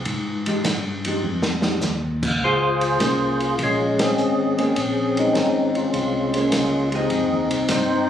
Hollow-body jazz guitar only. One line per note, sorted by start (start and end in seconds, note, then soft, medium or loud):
0.47 0.63 F3 medium
0.47 0.63 G#3 medium
0.47 0.63 D#4 medium
0.47 0.64 G4 medium
1.06 1.22 F3 medium
1.06 1.22 G#3 medium
1.06 1.22 D#4 medium
1.06 1.22 G4 medium
1.64 1.80 F3 medium
1.64 1.81 G#3 medium
1.64 1.81 D#4 medium
1.64 1.81 G4 medium
2.99 3.91 A#3 medium
2.99 3.91 C#4 medium
2.99 3.91 G#4 medium
2.99 3.91 C5 medium
4.58 4.74 A#3 medium
4.58 4.74 C#4 medium
4.58 4.75 G#4 medium
4.58 4.75 C5 medium
6.35 6.89 A#3 medium
6.35 6.89 C#4 medium
6.35 6.89 G#4 medium
6.35 6.90 C5 medium
6.92 7.09 F3 medium
6.92 7.09 G#3 medium
6.92 7.10 D#4 medium
6.92 7.10 G4 medium